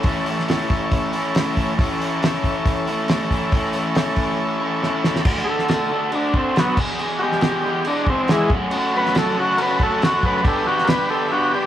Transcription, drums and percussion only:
0.03 kick, open hi-hat
0.26 open hi-hat
0.39 snare
0.49 snare, open hi-hat
0.70 kick, open hi-hat
0.92 kick, open hi-hat
1.13 open hi-hat
1.35 snare, open hi-hat
1.57 kick, open hi-hat
1.79 kick, open hi-hat
2.02 open hi-hat
2.23 snare, open hi-hat
2.44 kick, open hi-hat
2.66 kick, open hi-hat
2.87 open hi-hat
3.08 snare, open hi-hat
3.31 kick, open hi-hat
3.52 kick, open hi-hat
3.73 open hi-hat
3.95 snare, open hi-hat
4.16 kick, open hi-hat
4.83 snare
5.04 snare
5.16 snare
5.25 kick, crash
5.37 snare
5.59 snare
5.68 snare, crash
6.12 crash
6.34 kick
6.56 snare, crash
6.77 kick, crash
6.99 crash
7.32 snare
7.41 snare, crash
7.84 crash
8.07 kick
8.28 snare, crash
8.50 kick
8.71 crash
9.06 snare
9.15 snare, crash
9.58 crash
9.80 kick
10.02 snare, crash
10.23 kick
10.45 kick, crash
10.78 snare
10.87 snare, crash

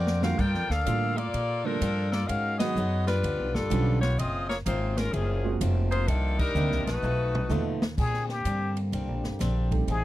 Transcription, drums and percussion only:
0.07 snare
0.23 snare
0.39 kick, crash
0.54 snare
0.71 snare
0.86 kick, hi-hat pedal, ride
1.18 ride
1.34 kick, ride
1.81 kick, hi-hat pedal, ride
2.12 snare
2.29 kick, ride
2.60 snare, ride
2.77 hi-hat pedal
3.08 snare, ride
3.24 kick, ride
3.55 snare
3.71 kick, hi-hat pedal, ride
4.03 snare, ride
4.19 kick, ride
4.50 snare
4.66 kick, hi-hat pedal, ride
4.97 snare, ride
5.13 kick, ride
5.61 kick, hi-hat pedal, ride
5.92 ride
6.08 kick, ride
6.39 kick, crash
6.56 hi-hat pedal
6.72 snare
6.87 snare, ride
7.04 mid tom
7.35 mid tom
7.51 hi-hat pedal, high tom
7.82 snare
7.98 kick, crash
8.14 snare
8.29 snare
8.45 kick, hi-hat pedal, ride
8.77 ride
8.93 kick, ride
9.24 snare
9.40 kick, snare, hi-hat pedal, ride
9.71 kick, ride
9.88 kick, ride

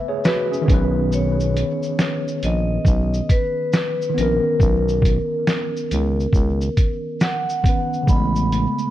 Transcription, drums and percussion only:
0.24 snare, shaker
0.53 shaker
0.68 kick, closed hi-hat, shaker
1.12 shaker
1.40 shaker
1.57 closed hi-hat, shaker
1.83 shaker
1.99 snare, shaker
2.28 shaker
2.43 closed hi-hat, shaker
2.85 kick, shaker
3.14 shaker
3.29 kick, closed hi-hat, shaker
3.73 snare, shaker
4.02 shaker
4.18 closed hi-hat, shaker
4.60 kick, shaker
4.89 shaker
5.02 kick, closed hi-hat, shaker
5.47 snare, shaker
5.77 shaker
5.91 closed hi-hat, shaker
6.20 shaker
6.33 kick, shaker
6.61 shaker
6.77 kick, closed hi-hat, shaker
7.20 snare, shaker
7.49 shaker
7.64 kick, closed hi-hat, shaker
7.93 shaker
8.07 kick, shaker
8.36 shaker
8.52 closed hi-hat, shaker
8.78 shaker

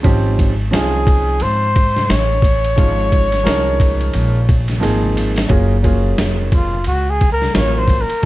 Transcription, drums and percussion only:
0.04 kick, ride, maracas
0.27 maracas
0.39 kick, ride, maracas
0.60 maracas
0.73 snare, hi-hat pedal, ride, maracas
0.94 maracas
1.07 kick, ride, low conga, maracas
1.28 maracas
1.40 ride, maracas
1.62 maracas
1.76 kick, ride, maracas
1.96 snare, high conga, maracas
2.10 snare, hi-hat pedal, ride, low conga, maracas
2.32 maracas
2.42 kick, ride, low conga, maracas
2.64 ride, maracas
2.77 kick, ride, maracas
2.99 maracas
3.12 kick, ride, maracas
3.32 snare, ride, maracas
3.46 snare, hi-hat pedal, ride, high conga, maracas
3.67 maracas
3.80 kick, ride, low conga, maracas
4.01 ride, high conga, maracas
4.13 ride, maracas
4.35 maracas
4.48 kick, ride, maracas
4.68 snare, ride, high conga, maracas
4.82 hi-hat pedal, ride, low conga, maracas
5.03 high conga, maracas
5.16 ride, low conga, maracas
5.36 snare, ride, maracas
5.49 kick, ride, maracas
5.72 maracas
5.84 kick, ride, maracas
6.05 maracas
6.18 snare, hi-hat pedal, ride, high conga, maracas
6.40 maracas
6.52 kick, ride, low conga, maracas
6.73 high conga, maracas
6.84 ride, maracas
7.08 maracas
7.21 kick, ride, maracas
7.42 snare, high conga, maracas
7.55 snare, hi-hat pedal, ride, low conga, maracas
7.77 maracas
7.88 kick, ride, low conga, maracas
8.10 ride, maracas

